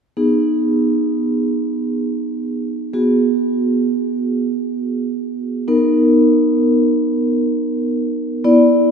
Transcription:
0.17 B3 D#4 G#4
2.93 B3 F#4 G#4
5.68 B3 D#4 A#4
8.44 B3 E4 D5

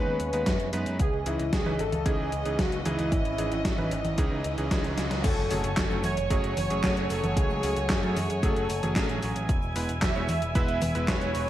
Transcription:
Already playing: G#3 B3 C#4 D#4 B4
0.07 D#2
0.20 D#2, closed hi-hat
0.33 D#2 G#3 B3 D#4 B4, closed hi-hat
0.46 F#2, kick, snare, closed hi-hat
0.60 F#2, closed hi-hat
0.73 F#2 G#3 B3 D#4 B4, closed hi-hat
0.86 F#2, closed hi-hat
0.99 C#2 E3 C#4 G#4 D#5, kick, closed hi-hat, riser
1.13 C#2
1.26 C#2 E3 C#4 D#4 E4 G#4, closed hi-hat
1.39 C#2, closed hi-hat
1.53 C#2 G#4, kick, snare, closed hi-hat
1.66 C#2 E3 C#4 D#4 B4, high conga
1.79 G#1 A4, closed hi-hat
1.92 C#2, closed hi-hat, high conga
2.06 C#2 E3 C#4 D#4 G#4, kick, closed hi-hat
2.19 C#2
2.32 C#2, closed hi-hat
2.46 C#2 E3 C#4 D#4 G#4, closed hi-hat
2.59 C#2 F#4, kick, snare, closed hi-hat
2.72 C#2, closed hi-hat
2.85 C#2 E3 C#4 D#4 E4 G#4, closed hi-hat, high conga
2.99 C#2, closed hi-hat, high conga
3.12 G#1, kick, closed hi-hat
3.25 G#1, closed hi-hat
3.38 G#1 E3 C#4 D#4 G#4, closed hi-hat
3.52 G#1, closed hi-hat
3.65 G#1, kick, snare, closed hi-hat
3.78 G#1 E3 C#4 D#4 B4, snare, high conga
3.91 G#1, closed hi-hat
4.05 G#1, closed hi-hat, high conga
4.18 C#2 E3 C#4 D#4 G#4, kick, closed hi-hat
4.32 C#2
4.44 C#2, closed hi-hat
4.58 C#2 E3 C#4 D#4 G#4, closed hi-hat
4.71 C#2 E3 C#4 D#4 G#4, kick, snare, closed hi-hat
4.84 C#2, snare, closed hi-hat
4.97 C#2, snare, closed hi-hat
5.11 C#2, snare, closed hi-hat
5.24 F#1 F#3 A3 F#4 A4 C#5 G#5, kick, closed hi-hat, crash, impact, cabasa
5.37 F#1, cabasa
5.51 F#1 F#3 A3 C#4 G#4, open hi-hat, cabasa
5.64 F#1, closed hi-hat, cabasa
5.77 F#1, kick, snare, clap, closed hi-hat, cabasa
5.91 F#1 F#3 A3 C#4 A4, cabasa
6.04 F#2 C#5, open hi-hat, high conga, cabasa
6.17 F#1, closed hi-hat, cabasa
6.30 F#1 F#3 A3 C#4 G#4 C#5, kick, closed hi-hat, cabasa
6.44 F#1, closed hi-hat, cabasa
6.57 F#1, open hi-hat, high conga, cabasa
6.70 F#1 F#3 A3 C#4 G#4, closed hi-hat, cabasa
6.83 F#1 F#3 A3 C#4 G#4, kick, snare, clap, closed hi-hat, cabasa
6.97 F#1, closed hi-hat, cabasa
7.10 F#1 A4, open hi-hat, cabasa
7.23 F#1, closed hi-hat, high conga, cabasa
7.36 C#2 G#4, kick, closed hi-hat, cabasa
7.50 C#2, cabasa
7.63 C#2 F#3 A3 C#4 G#4, open hi-hat, cabasa
7.77 C#2, closed hi-hat, cabasa
7.90 F#2 G#4, kick, snare, clap, closed hi-hat, cabasa
8.03 F#2 F#3 A3 C#4 A4, snare, cabasa
8.16 F#2, open hi-hat, high conga, cabasa
8.30 F#2, closed hi-hat, cabasa
8.43 F#1 F#3 A3 C#4 G#4 A4, kick, closed hi-hat, cabasa
8.56 F#1, closed hi-hat, cabasa
8.70 F#1, open hi-hat, cabasa
8.83 F#1 F#3 A3 C#4 G#4, closed hi-hat, high conga, cabasa
8.96 A1 F#3 A3 C#4 G#4, kick, snare, clap, closed hi-hat, cabasa
9.09 A1, closed hi-hat, cabasa
9.23 A1, open hi-hat, cabasa
9.36 A1, closed hi-hat, cabasa
9.49 E1 B3 E4, kick, closed hi-hat, cabasa
9.62 E1, cabasa
9.76 E1 G#3 B3 E4 B4, open hi-hat, cabasa
9.89 E1, closed hi-hat, cabasa
10.02 E1 E5, kick, snare, clap, closed hi-hat, cabasa
10.15 E1 G#3 B3 E4 C#5, cabasa
10.29 E2, open hi-hat, high conga, cabasa
10.42 E1, closed hi-hat, cabasa
10.55 E1 G#3 B3 E4 B4 E5, kick, closed hi-hat, cabasa
10.68 E1, closed hi-hat, cabasa
10.82 E1, open hi-hat, high conga, cabasa
10.95 E1 G#3 B3 E4 B4, closed hi-hat, cabasa
11.08 E1 G#3 B3 E4 B4 C#5, kick, snare, clap, closed hi-hat, cabasa
11.21 E1, closed hi-hat, cabasa
11.35 E1, open hi-hat, cabasa

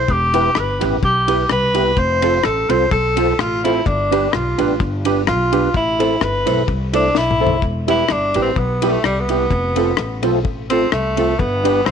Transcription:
Already playing: C5
0.08 E1 G4, kick
0.33 B3 E4 G4 B4, ride
0.55 G1 G4 B4, cross-stick
0.80 A1 B3 E4 G4 B4, ride
1.03 B1 G4, kick
1.27 B3 E4 G4 B4, ride
1.49 C2 G4 B4, cross-stick
1.74 B3 E4 G4 B4, ride
1.97 F1 C5, kick
2.22 C4 F4 A4 C5, ride
2.43 A1 A4, cross-stick
2.69 C2 C4 F4 A4 C5, ride
2.91 B1 A4, kick
3.16 C4 F4 A4 C5, ride
3.39 A1 F4, cross-stick
3.64 C4 E4 F4 A4 C5, ride
3.86 G1 D4, kick
4.11 B3 D4 G4 B4, ride
4.33 B1 F4 G4 B4, cross-stick
4.58 A1 B3 D4 G4 B4, ride
4.80 G1, kick
5.05 B3 D4 G4 B4, ride
5.27 B1 F4 G4 B4, cross-stick
5.52 B3 D4 G4 B4, ride
5.74 A1 E4, kick
5.99 A3 C4 E4 A4 C5, ride
6.21 G1 E4 A4 B4, cross-stick
6.46 B1 A3 C4 E4 A4 C5, ride
6.68 C2, kick
6.93 A3 C4 D4 E4 A4 C5, ride
7.15 B1 E4, snare
7.31 mid tom
7.40 A3 C4 E4 A4 C5
7.47 floor tom
7.62 E1, kick
7.87 G3 B3 E4 G4 B4, ride
8.09 G1 D4 E4 G4, cross-stick
8.34 A1 G3 B3 E4 G4 B4, ride
8.42 C4
8.56 B1 B3, kick
8.81 G3 B3 E4 G4 B4, ride
8.89 A3
9.03 C2 G3 E4 G4, cross-stick
9.20 B3
9.28 G3 B3 E4 G4 B4, ride
9.51 F1, kick
9.75 A3 C4 F4 A4, ride
9.97 A1 F4 A4, cross-stick
10.22 B1 A3 C4 F4 A4, ride
10.45 A1, kick
10.70 A3 C4 F4 A4, ride
10.92 C2 A3, cross-stick
11.17 A3 C4 F4 A4, ride
11.39 G1 B3, kick
11.64 B3 D4 G4 B4, ride
11.86 B1 C4 G4 B4, cross-stick

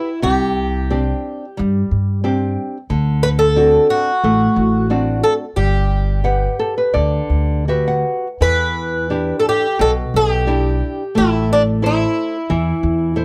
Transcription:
Already playing: E4
0.22 C2 C3 G4
0.90 C4 D4 G4
1.57 G2 G3
1.91 G2
2.24 C4 D4 G4
2.90 D2 D3
3.23 B4
3.39 A4
3.56 C4 D4 F#4
3.90 F#4
4.24 A1 A3
4.56 A1
4.90 C4 D4 F#4
5.24 A4
5.56 G1 G3 G4
6.24 G4 B4 F#5
6.59 A4
6.78 B4
6.94 D2 D3 D5
7.30 D2
7.68 F#4 G4 B4 E5
7.88 F#5
8.41 E2 E3 B4
9.10 D4 E4 G4
9.40 A4
9.49 G4
9.79 B1 B2 A4
10.14 B1 G4
10.47 D4 E4 G4
11.15 A1 A3 E4
11.53 D4
11.82 E4 A4 C5
12.50 E2 E3
12.83 E2
13.16 E4 A4 C5

